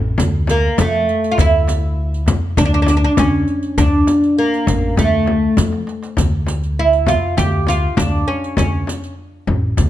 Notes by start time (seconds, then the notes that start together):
Already playing: A1
0.18 D2, riq, frame drum, darbuka dum
0.47 A#3, riq, darbuka tek, frame drum
0.78 F2 A3, riq, frame drum, darbuka dum
1.08 riq, darbuka ka
1.23 riq, darbuka ka
1.31 F4
1.38 D2 E4, riq, darbuka dum, frame drum
1.68 riq, darbuka tek, frame drum
2.14 riq
2.26 riq, darbuka dum, frame drum
2.57 D2 D4, riq, darbuka dum, frame drum
2.65 D4
2.74 D4
2.82 D4
2.87 D4, riq, darbuka tek, frame drum
2.97 D4
3.04 D4
3.17 D2 C#4, riq, frame drum, darbuka dum
3.48 riq
3.63 riq, darbuka ka
3.78 D2 D4, riq, darbuka dum, frame drum
4.07 riq, darbuka tek, frame drum
4.22 riq, darbuka ka
4.37 A#3, riq, darbuka ka
4.54 riq
4.67 A1, riq, darbuka dum, frame drum
4.96 D2 A3, riq, darbuka dum, frame drum
5.26 darbuka tek, frame drum
5.57 F2, riq, darbuka tek, frame drum
5.72 darbuka ka
5.87 riq, darbuka tek
6.03 riq, darbuka ka
6.17 D2, riq, frame drum, darbuka dum
6.47 riq, darbuka tek, frame drum
6.63 riq, darbuka ka
6.79 E4
6.93 riq
7.07 F4, riq, frame drum, darbuka dum
7.37 D2 G4, riq, darbuka dum, frame drum
7.67 F4, riq, darbuka tek, frame drum
7.97 D2 D4, riq, darbuka dum, frame drum
8.28 C#4, darbuka ka
8.43 riq, darbuka ka
8.57 D2 C#4, riq, frame drum, darbuka dum
8.87 riq, darbuka tek, frame drum
9.03 riq, darbuka ka
9.47 A1, frame drum, darbuka dum
9.77 D2, riq, frame drum, darbuka dum